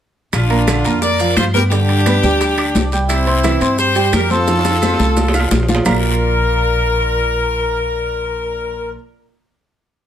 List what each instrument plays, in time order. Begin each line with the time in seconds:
0.33 upright bass A#1, horn section D4 F4, high bongo, high conga, high timbale, long guiro, claves, maracas
0.50 grand piano A#3 A#4 A#5, high bongo, high conga, high timbale
0.67 grand piano D3 D4 D5, high bongo, high conga, high timbale, low timbale, short guiro, claves, maracas
0.85 upright bass F2, grand piano A#3 A#4 A#5, high bongo, high conga, high timbale, short guiro, maracas
1.02 horn section A#4 D5, high bongo, high conga, long guiro, maracas
1.20 grand piano F3 F4 F5, high bongo, high conga, high timbale, maracas
1.37 upright bass G2, horn section F4 C5, high bongo, low bongo, high conga, high timbale, low timbale, short guiro, claves, maracas
1.54 grand piano B3 B4 B5, horn section G4 A#4, high conga, short guiro, maracas
1.71 grand piano D3 D4 D5, horn section D4 G4, high bongo, high conga, high timbale, long guiro, maracas
1.89 high bongo, high conga, high timbale
2.06 grand piano B3 B4 B5, high bongo, high conga, high timbale, low timbale, short guiro, claves, maracas
2.23 upright bass D2, grand piano G3 G4 G5, high bongo, high conga, short guiro, maracas
2.40 high bongo, high conga, high timbale, long guiro, maracas
2.58 grand piano D4 D5 D6, high bongo, high conga, high timbale, claves
2.75 upright bass C2, high bongo, low bongo, high conga, low timbale, short guiro, maracas
2.92 grand piano G3 G4 G5, short guiro, maracas
3.08 horn section C4 E4, high bongo, high conga, high timbale, long guiro, claves, maracas
3.27 grand piano C4 C5 C6, high bongo, high conga, high timbale
3.44 grand piano E3 E4 E5, high bongo, high conga, high timbale, low timbale, short guiro, claves, maracas
3.61 upright bass G2, grand piano C4 C5 C6, high bongo, high conga, high timbale, short guiro, maracas
3.78 horn section G4 C5, high bongo, high conga, long guiro, maracas
3.95 grand piano G3 G4 G5, high bongo, high conga, high timbale, maracas
4.13 upright bass F2, horn section G4 A#4, high bongo, low bongo, high conga, high timbale, low timbale, short guiro, claves, maracas
4.30 grand piano C4 C5 C6, horn section F4 A4, high conga, short guiro, maracas
4.47 grand piano F3 F4 F5, high bongo, high conga, high timbale, long guiro, maracas
4.59 high timbale
4.65 high bongo, high conga, maracas
4.71 high timbale
4.82 grand piano C4 C5 C6, high bongo, high conga, short guiro, claves, maracas
4.94 low timbale
4.99 upright bass C2, grand piano A3 A4 A5, high bongo, high conga, short guiro, maracas
5.17 low bongo, high conga, low timbale, long guiro, maracas
5.28 low timbale
5.34 grand piano F4 F5 F6, low bongo, high conga, claves, maracas
5.40 low timbale
5.51 upright bass A#1, low bongo, high conga, low timbale, short guiro, maracas
5.63 low timbale
5.68 grand piano F3 F4 F5, low bongo, high conga, short guiro, maracas
5.75 low timbale
5.85 upright bass A#1, grand piano A#3 F4 A#4 D5 F5 A#5, horn section A#4, low bongo, low conga, low timbale, long guiro, claves, maracas